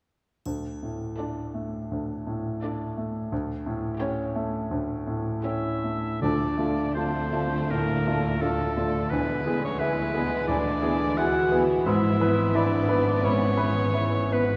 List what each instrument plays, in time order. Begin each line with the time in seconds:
0.46 grand piano D2, triangle
0.83 grand piano A2
1.18 viola section A3 F4, grand piano D4, violin section A4 D5
1.54 grand piano A3
1.91 grand piano D2
2.27 grand piano A2
2.62 viola section A3 F4, grand piano D4, violin section A4 D5
2.97 grand piano A3
3.32 grand piano D2
3.66 grand piano A2
3.99 viola section A3 E4, grand piano C#4, violin section G4 C#5
4.36 grand piano A3
4.71 grand piano D2
5.07 grand piano A2
5.43 viola section A3 E4, grand piano C#4, french horn section E4, violin section G4 C#5, oboe E5
5.84 grand piano A3
6.21 double bass section D2, grand piano D2, bassoon D3, timpani D3, cello section D3, viola section F3, violin section A3 D4, french horn section D4, clarinet F4, oboe D5, flute section A5
6.57 bassoon D3, grand piano A3 F4, clarinet F4, flute section A5
6.94 bassoon D3, french horn section C4, grand piano D4 F4, clarinet F4, oboe C5, flute section A5
7.32 bassoon D3, grand piano A3 F4, clarinet F4, flute section A5
7.69 grand piano A2, bassoon D3, french horn section A#3, clarinet F4, oboe A#4, flute section A5
8.05 bassoon D3, grand piano A3 F4, clarinet F4, flute section A5
8.41 bassoon D3, french horn section A3, grand piano D4 F4, clarinet F4, oboe A4, flute section A5
8.76 bassoon D3, grand piano A3 F4, clarinet F4, flute section A5
9.10 grand piano D2, viola section E3, bassoon E3, violin section G#3 E4, french horn section B3, clarinet E4, oboe B4, flute section G#5
9.46 bassoon E3, grand piano B3 G#4, clarinet E4, flute section G#5
9.63 french horn section C#4, oboe C#5
9.79 bassoon E3, french horn section B3, grand piano E4 G#4, clarinet E4, oboe B4, flute section G#5
10.13 bassoon E3, grand piano B3 G#4, clarinet E4, flute section G#5
10.48 grand piano D2, bassoon E3, french horn section D4, clarinet E4, oboe D5, flute section G#5
10.81 bassoon E3, grand piano B3 G#4, clarinet E4, flute section G#5
11.16 bassoon E3, clarinet E4, grand piano E4 G#4, french horn section F#4, oboe F#5, flute section G#5
11.51 bassoon E3, grand piano B3 G#4, clarinet E4, flute section G#5
11.86 double bass section G#1, grand piano G#2, cello section G#2, bassoon E3, violin section B3, clarinet E4, french horn section E4, oboe E5, flute section B5
12.20 bassoon E3, grand piano B3 B4, clarinet E4, flute section B5
12.54 bassoon E3, french horn section D4, clarinet E4, grand piano E4 B4, oboe D5, flute section B5
12.88 bassoon E3, grand piano B3 B4, clarinet E4, flute section B5
13.23 grand piano G#2, bassoon E3, french horn section C#4, clarinet E4, oboe C#5, flute section B5
13.57 bassoon E3, grand piano B3 B4, clarinet E4, flute section B5
13.94 bassoon E3, grand piano E4 B4, clarinet E4, flute section B5
14.32 bassoon E3, grand piano B3 B4, french horn section B3, clarinet E4, oboe B4, flute section B5